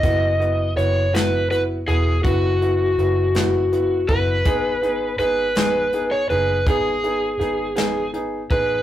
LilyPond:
<<
  \new Staff \with { instrumentName = "Electric slide guitar" } { \time 6/8 \key fis \dorian \tempo 4. = 54 dis''4 cis''8 b'8 b'8 gis'8 | fis'2~ fis'8 b'8~ | b'4 b'4~ b'16 cis''16 b'8 | gis'2 r8 b'8 | }
  \new Staff \with { instrumentName = "Grand piano" } { \time 6/8 \key fis \dorian <b e' fis'>8 <b e' fis'>8 <b e' fis'>8 <b e' fis'>8 <b e' fis'>8 <b e' fis'>8 | <b e' fis'>8 <b e' fis'>8 <b e' fis'>8 <b e' fis'>8 <b e' fis'>8 <b e' fis'>8 | <b dis' gis'>8 <b dis' gis'>8 <b dis' gis'>8 <b dis' gis'>8 <b dis' gis'>8 <b dis' gis'>8 | <b dis' gis'>8 <b dis' gis'>8 <b dis' gis'>8 <b dis' gis'>8 <b dis' gis'>8 <b dis' gis'>8 | }
  \new Staff \with { instrumentName = "Fingered electric bass" } { \clef bass \time 6/8 \key fis \dorian fis,,4 fis,,4. e,,8 | fis,,4 fis,,4. fis,,8 | gis,,4 gis,,4. fis,,8 | gis,,4 gis,,4. a,,8 | }
  \new DrumStaff \with { instrumentName = "Drums" } \drummode { \time 6/8 <hh bd>8 hh8 hh8 <hh sn>8 hh8 hh8 | <hh bd>8 hh8 hh8 <hh sn>8 hh8 <hh bd>8 | <hh bd>8 hh8 hh8 <hh sn>8 hh8 hh8 | <hh bd>8 hh8 hh8 <hh sn>8 hh8 <hh bd>8 | }
>>